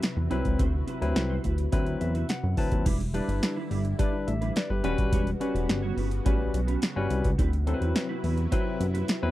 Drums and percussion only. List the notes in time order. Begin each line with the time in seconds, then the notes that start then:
0.03 snare, closed hi-hat
0.31 closed hi-hat
0.45 kick, closed hi-hat
0.59 kick, closed hi-hat
0.88 closed hi-hat
1.02 closed hi-hat
1.16 snare, closed hi-hat
1.44 kick, closed hi-hat
1.58 closed hi-hat
1.72 kick, closed hi-hat
1.86 closed hi-hat
2.01 closed hi-hat
2.15 closed hi-hat
2.29 snare, closed hi-hat
2.57 kick, open hi-hat
2.72 kick, closed hi-hat
2.86 kick, closed hi-hat, crash
3.00 closed hi-hat
3.14 closed hi-hat
3.29 closed hi-hat
3.43 snare, closed hi-hat
3.71 open hi-hat
3.85 closed hi-hat
3.99 kick, closed hi-hat
4.28 closed hi-hat
4.42 closed hi-hat
4.56 snare, closed hi-hat
4.84 closed hi-hat
4.98 kick, closed hi-hat
5.12 kick, closed hi-hat
5.27 closed hi-hat
5.41 closed hi-hat
5.56 closed hi-hat
5.69 snare, closed hi-hat
5.98 open hi-hat
6.11 closed hi-hat
6.26 kick, closed hi-hat
6.54 closed hi-hat
6.68 closed hi-hat
6.82 snare, closed hi-hat
7.10 closed hi-hat
7.24 kick, closed hi-hat
7.39 kick, closed hi-hat
7.53 closed hi-hat
7.67 closed hi-hat
7.82 closed hi-hat
7.96 snare, closed hi-hat
8.24 open hi-hat
8.38 closed hi-hat
8.52 kick, closed hi-hat
8.81 closed hi-hat
8.95 closed hi-hat
9.08 snare, closed hi-hat